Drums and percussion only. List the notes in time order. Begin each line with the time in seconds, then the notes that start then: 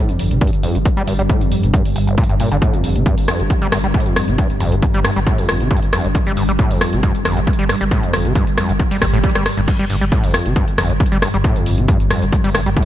0.09 closed hi-hat
0.19 open hi-hat
0.31 closed hi-hat
0.41 kick, closed hi-hat
0.47 closed hi-hat
0.53 closed hi-hat
0.63 open hi-hat
0.75 closed hi-hat
0.85 kick, closed hi-hat
0.97 closed hi-hat
1.08 open hi-hat
1.19 closed hi-hat
1.30 kick, closed hi-hat
1.41 closed hi-hat
1.52 open hi-hat
1.63 closed hi-hat
1.74 kick, closed hi-hat
1.85 open hi-hat
1.96 open hi-hat
2.08 closed hi-hat
2.18 kick, closed hi-hat
2.24 closed hi-hat
2.29 closed hi-hat
2.40 open hi-hat
2.52 closed hi-hat
2.62 kick, closed hi-hat
2.74 closed hi-hat
2.84 open hi-hat
2.96 closed hi-hat
3.06 kick, closed hi-hat
3.18 open hi-hat
3.28 cross-stick, open hi-hat
3.40 closed hi-hat
3.50 kick, closed hi-hat
3.62 closed hi-hat
3.72 cross-stick, open hi-hat
3.84 closed hi-hat
3.94 kick, closed hi-hat
4.00 closed hi-hat
4.06 closed hi-hat
4.16 cross-stick, open hi-hat
4.28 closed hi-hat
4.38 kick, closed hi-hat
4.50 closed hi-hat
4.60 open hi-hat
4.72 closed hi-hat
4.82 kick, closed hi-hat
4.94 closed hi-hat
5.05 cross-stick, open hi-hat
5.16 closed hi-hat
5.27 kick, closed hi-hat
5.38 open hi-hat
5.49 cross-stick, open hi-hat
5.60 closed hi-hat
5.71 kick, closed hi-hat
5.77 closed hi-hat
5.82 closed hi-hat
5.93 cross-stick, open hi-hat
6.04 closed hi-hat
6.15 kick, closed hi-hat
6.27 closed hi-hat
6.37 open hi-hat
6.49 closed hi-hat
6.59 kick, closed hi-hat
6.71 open hi-hat
6.81 cross-stick, open hi-hat
6.93 closed hi-hat
7.03 kick, closed hi-hat
7.15 closed hi-hat
7.25 cross-stick, open hi-hat
7.37 closed hi-hat
7.47 kick, closed hi-hat
7.53 closed hi-hat
7.59 closed hi-hat
7.69 cross-stick, open hi-hat
7.81 closed hi-hat
7.91 kick, closed hi-hat
8.03 closed hi-hat
8.13 cross-stick, open hi-hat
8.25 closed hi-hat
8.35 kick, closed hi-hat
8.47 closed hi-hat
8.58 cross-stick, open hi-hat
8.69 closed hi-hat
8.80 kick, closed hi-hat
8.91 open hi-hat
9.02 kick, cross-stick, open hi-hat
9.13 closed hi-hat
9.24 kick, closed hi-hat
9.30 closed hi-hat
9.35 cross-stick, closed hi-hat
9.46 cross-stick, open hi-hat
9.57 closed hi-hat
9.68 kick, closed hi-hat, crash
9.79 closed hi-hat
9.90 open hi-hat
10.02 closed hi-hat
10.12 kick, closed hi-hat
10.24 open hi-hat
10.34 cross-stick, open hi-hat
10.46 closed hi-hat
10.56 kick, closed hi-hat
10.68 closed hi-hat
10.78 cross-stick, open hi-hat
10.90 closed hi-hat
11.00 kick, closed hi-hat
11.06 closed hi-hat
11.12 closed hi-hat
11.22 cross-stick, open hi-hat
11.34 closed hi-hat
11.44 kick, closed hi-hat
11.56 closed hi-hat
11.66 open hi-hat
11.78 closed hi-hat
11.88 kick, closed hi-hat
12.00 closed hi-hat
12.11 cross-stick, open hi-hat
12.22 closed hi-hat
12.33 kick, closed hi-hat
12.44 open hi-hat
12.55 cross-stick, open hi-hat
12.66 closed hi-hat
12.77 kick, closed hi-hat